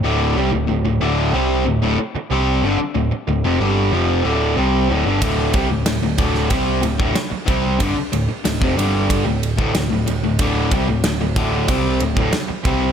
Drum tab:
RD |----------------|----------------|x-x-x-x-x-x-x-x-|x-x-x-x-x-x-x-x-|
SD |----------------|----------------|----o--o----o---|----o-------o---|
BD |----------------|----------------|o-o---o-o--o--o-|o----o--o--o----|

RD |x-x-x-x-x-x-x-x-|
SD |----o-------o---|
BD |o-o---o-o--o--o-|